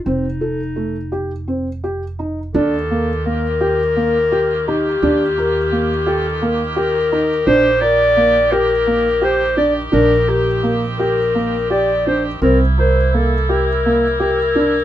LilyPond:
<<
  \new Staff \with { instrumentName = "Clarinet" } { \time 7/8 \key ees \lydian \tempo 4 = 85 ees'2~ ees'8 r4 | a'4 bes'2 g'8~ | g'4. a'8 r8 bes'4 | c''8 d''4 bes'4 c''8 d''8 |
bes'8 g'8 r8 bes'4 d''8 c''8 | bes'8 c''8 a'8 bes'4 bes'4 | }
  \new Staff \with { instrumentName = "Felt piano" } { \time 7/8 \key ees \lydian c'8 a'8 a8 g'8 c'8 g'8 ees'8 | d'8 bes8 bes8 g'8 bes8 g'8 ees'8 | d'8 bes'8 bes8 g'8 bes8 g'8 ees'8 | d'8 bes'8 bes8 g'8 bes8 g'8 d'8 |
d'8 bes'8 bes8 g'8 bes8 g'8 d'8 | c'8 bes'8 bes8 g'8 bes8 g'8 d'8 | }
  \new Staff \with { instrumentName = "Woodwind section" } { \time 7/8 \key ees \lydian << { r2. r8 | <ees g'>2.~ <ees g'>8~ | <ees g'>2.~ <ees g'>8~ | <ees g'>2.~ <ees g'>8~ |
<ees g'>2.~ <ees g'>8 | e'2.~ e'8 | } \\ { r2. r8 | <bes f'>2.~ <bes f'>8~ | <bes f'>2.~ <bes f'>8 | bes2.~ bes8 |
c'2.~ c'8 | <c bes>2.~ <c bes>8 | } >> }
  \new Staff \with { instrumentName = "Upright bass" } { \clef bass \time 7/8 \key ees \lydian f,,2.~ f,,8 | ees,2.~ ees,8 | ees,2.~ ees,8 | bes,,2.~ bes,,8 |
bes,,2.~ bes,,8 | c,2.~ c,8 | }
>>